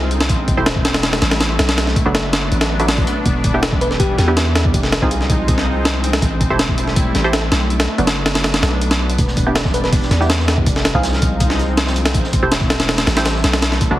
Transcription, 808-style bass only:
0.00 0.31 C2 medium
0.29 0.56 A1 medium
0.58 1.21 E1 medium
1.22 1.58 A1 medium
1.59 1.95 B1 medium
2.06 2.51 F#1 medium
2.52 3.06 A1 medium
3.26 4.17 E1 loud
4.19 4.73 E2 loud
4.74 5.01 F1 loud
5.02 6.21 C2 medium
6.22 6.49 A1 medium
6.50 7.13 E1 medium
7.15 7.50 A1 medium
7.52 7.87 B1 medium
7.98 8.62 F#1 medium
8.63 9.17 B1 medium
9.19 10.10 E1 loud
10.11 10.68 E2 loud
10.67 10.93 F1 loud
10.95 12.16 C2 medium
12.15 12.41 A1 medium
12.43 13.06 E1 medium
13.07 13.43 A1 loud
13.44 13.80 B1 medium
13.91 13.99 F#1 medium

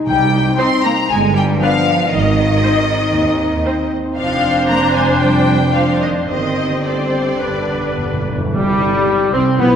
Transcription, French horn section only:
0.00 1.06 D#4 medium
0.08 1.06 C4 medium
1.11 2.09 B3 medium
1.11 2.09 D4 medium
2.13 6.26 C4 medium
2.13 4.13 D#4 medium
4.16 6.25 D4 medium
6.30 7.26 C4 medium
6.30 8.23 G4 medium
7.43 8.23 B3 soft
8.55 9.30 G3 medium
9.33 9.59 C4 medium
9.60 9.76 B3 medium

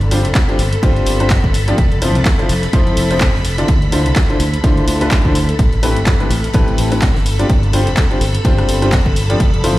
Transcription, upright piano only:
0.11 0.24 G3 medium
0.11 0.24 C4 medium
0.11 0.24 D4 medium
0.11 0.24 F4 medium
0.11 0.24 G4 medium
0.11 0.24 C5 loud
0.49 0.58 G3 medium
0.49 0.58 C4 medium
0.49 0.58 D4 medium
0.49 0.58 F4 medium
0.49 0.58 G4 medium
0.49 0.58 C5 medium
0.83 1.17 G3 loud
0.83 1.17 C4 medium
0.83 1.17 D4 medium
0.83 1.17 F4 medium
0.83 1.17 G4 medium
0.83 1.17 C5 loud
1.20 1.30 G3 medium
1.20 1.30 C4 medium
1.20 1.30 D4 medium
1.20 1.30 F4 medium
1.20 1.30 G4 medium
1.20 1.30 C5 medium
1.68 1.77 F3 medium
1.68 1.77 C4 medium
1.68 1.77 D4 medium
1.68 1.77 F4 medium
1.68 1.77 G4 medium
1.68 1.77 D5 medium
2.02 2.14 F3 medium
2.02 2.14 C4 medium
2.02 2.14 E4 medium
2.02 2.14 F4 medium
2.02 2.15 A4 medium
2.02 2.15 C5 loud
2.39 2.49 F3 medium
2.39 2.49 C4 medium
2.39 2.49 E4 medium
2.39 2.49 F4 medium
2.39 2.49 A4 medium
2.39 2.49 C5 medium
2.73 3.07 F3 medium
2.73 3.07 C4 medium
2.73 3.07 E4 medium
2.73 3.07 F4 medium
2.73 3.07 A4 medium
2.73 3.07 C5 loud
3.11 3.20 F3 medium
3.11 3.20 C4 medium
3.11 3.20 E4 medium
3.11 3.20 F4 medium
3.11 3.20 A4 medium
3.11 3.20 C5 medium
3.58 3.67 D3 medium
3.58 3.67 C4 medium
3.58 3.67 E4 medium
3.58 3.67 F4 medium
3.58 3.67 A4 medium
3.58 3.67 D5 medium
3.92 4.05 D3 medium
3.92 4.05 D4 medium
3.92 4.05 E4 medium
3.92 4.05 F4 medium
3.92 4.05 A4 medium
3.92 4.05 C5 loud
4.30 4.39 D3 medium
4.30 4.39 D4 medium
4.30 4.39 E4 medium
4.30 4.39 F4 medium
4.30 4.39 A4 medium
4.30 4.39 C5 medium
4.64 4.98 D3 medium
4.64 4.98 D4 medium
4.64 4.98 E4 medium
4.64 4.98 F4 medium
4.64 4.98 A4 medium
4.64 4.98 C5 loud
5.01 5.18 D3 loud
5.01 5.18 D4 medium
5.01 5.18 E4 medium
5.01 5.18 F4 medium
5.01 5.18 A4 medium
5.01 5.18 B4 loud
5.25 5.35 D3 medium
5.25 5.35 D4 medium
5.25 5.35 E4 medium
5.25 5.35 F4 medium
5.25 5.35 A4 medium
5.25 5.35 C5 medium
5.83 5.95 A2 medium
5.83 5.95 C4 medium
5.83 5.95 E4 medium
5.83 5.95 G4 medium
5.83 5.95 A4 medium
5.83 5.95 B4 medium
6.20 6.30 A2 medium
6.20 6.30 C4 medium
6.20 6.30 E4 medium
6.20 6.30 G4 medium
6.20 6.30 A4 medium
6.20 6.30 B4 medium
6.54 6.88 A2 medium
6.54 6.88 C4 medium
6.54 6.88 E4 medium
6.54 6.88 G4 medium
6.54 6.88 A4 medium
6.54 6.88 B4 loud
6.92 7.01 A2 medium
6.92 7.01 C4 medium
6.92 7.01 E4 medium
6.92 7.01 G4 medium
6.92 7.01 A4 medium
6.92 7.01 B4 medium
7.39 7.49 G3 medium
7.39 7.49 C4 medium
7.39 7.49 D4 medium
7.39 7.49 F4 medium
7.39 7.49 G4 medium
7.39 7.49 D5 medium
7.73 7.86 G3 medium
7.73 7.86 C4 medium
7.73 7.86 D4 medium
7.73 7.86 F4 medium
7.73 7.86 G4 medium
7.73 7.86 C5 loud
8.11 8.20 G3 medium
8.11 8.20 C4 medium
8.11 8.20 D4 medium
8.11 8.20 F4 medium
8.11 8.20 G4 medium
8.11 8.20 C5 medium
8.45 8.79 G3 loud
8.45 8.79 C4 medium
8.45 8.79 D4 medium
8.45 8.79 F4 medium
8.45 8.79 G4 medium
8.45 8.79 C5 loud
8.82 8.92 G3 medium
8.82 8.92 C4 medium
8.82 8.92 D4 medium
8.82 8.92 F4 medium
8.82 8.92 G4 medium
8.82 8.92 C5 medium
9.30 9.39 F3 medium
9.30 9.39 C4 medium
9.30 9.39 D4 medium
9.30 9.39 F4 medium
9.30 9.39 G4 medium
9.30 9.39 D5 medium
9.64 9.76 F3 medium
9.64 9.76 C4 medium
9.64 9.76 E4 medium
9.64 9.76 F4 medium
9.64 9.76 A4 medium
9.64 9.76 C5 loud

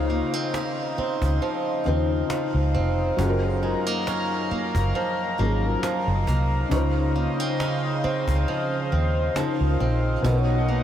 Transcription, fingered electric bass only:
0.00 0.21 C#2 loud
0.98 muted fingered electric bass stroke soft
1.22 1.38 C#2 medium
1.87 2.22 D#2 medium
2.54 2.76 C#2 medium
2.75 3.10 F1 medium
3.19 3.74 F#1 loud
4.51 muted fingered electric bass stroke soft
4.75 4.91 F#1 medium
5.39 5.75 G#1 medium
6.08 6.24 F#1 medium
6.28 6.63 C2 medium
6.72 7.27 C#2 medium
8.04 muted fingered electric bass stroke soft
8.28 8.44 C#2 medium
8.93 9.28 D#2 medium
9.61 9.77 C#2 medium
9.81 10.16 A#1 medium
10.25 10.80 B1 loud

